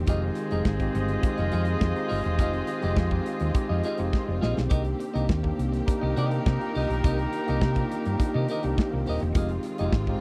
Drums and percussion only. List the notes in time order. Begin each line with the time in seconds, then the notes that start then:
0.07 kick, closed hi-hat
0.35 closed hi-hat
0.51 closed hi-hat
0.65 kick, snare
0.80 kick, closed hi-hat
0.95 closed hi-hat
1.08 closed hi-hat
1.23 kick, closed hi-hat
1.38 closed hi-hat
1.52 closed hi-hat
1.65 closed hi-hat
1.81 kick, snare
1.96 closed hi-hat
2.10 open hi-hat
2.24 closed hi-hat
2.39 kick, closed hi-hat
2.53 closed hi-hat
2.67 closed hi-hat
2.82 closed hi-hat
2.96 kick, snare
3.11 kick
3.26 closed hi-hat
3.40 closed hi-hat
3.55 kick, closed hi-hat
3.83 closed hi-hat
3.98 closed hi-hat
4.13 kick, snare
4.43 snare
4.57 snare
4.70 kick, closed hi-hat
4.85 closed hi-hat
5.00 closed hi-hat
5.16 closed hi-hat
5.29 kick, snare
5.44 kick
5.59 closed hi-hat
5.73 snare, closed hi-hat
5.88 kick, closed hi-hat
6.17 closed hi-hat
6.31 closed hi-hat
6.46 kick, snare
6.61 closed hi-hat
6.75 open hi-hat
6.91 closed hi-hat
7.04 kick, closed hi-hat
7.19 closed hi-hat
7.33 closed hi-hat
7.48 closed hi-hat
7.61 kick, snare
7.75 kick, closed hi-hat
7.92 closed hi-hat
8.05 closed hi-hat
8.20 kick, closed hi-hat
8.48 closed hi-hat
8.63 closed hi-hat
8.78 kick, snare
9.06 open hi-hat
9.20 closed hi-hat
9.35 kick, closed hi-hat
9.49 closed hi-hat
9.63 closed hi-hat
9.78 closed hi-hat
9.92 kick, snare
10.07 kick